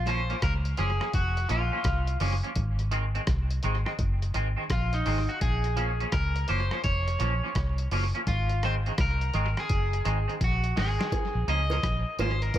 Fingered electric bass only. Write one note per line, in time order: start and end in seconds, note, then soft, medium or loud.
0.00 0.33 A#1 loud
0.43 0.74 C#2 medium
0.79 0.98 F#1 medium
1.14 1.45 F1 medium
1.50 1.70 A#1 medium
1.85 2.16 C2 medium
2.21 2.41 F#1 medium
2.56 3.18 G#1 loud
3.28 3.59 C2 medium
3.64 3.84 G#1 medium
3.99 4.30 F#1 medium
4.35 4.55 G#1 medium
4.70 5.01 A#1 loud
5.07 5.26 G#1 medium
5.42 6.04 A#1 loud
6.13 6.44 C#2 medium
6.49 6.69 F#1 medium
6.85 7.16 F1 medium
7.21 7.40 A#1 medium
7.56 7.87 C2 medium
7.92 8.12 F#1 medium
8.27 8.89 G#1 loud
8.99 9.30 C2 loud
9.35 9.54 G#1 medium
9.70 10.01 F#1 medium
10.06 10.26 G#1 medium
10.41 10.72 A#1 medium
10.77 10.97 G#1 medium
11.35 11.46 A#1 medium
11.48 11.79 C#2 medium
11.84 12.03 A#1 medium
12.19 12.50 G#1 medium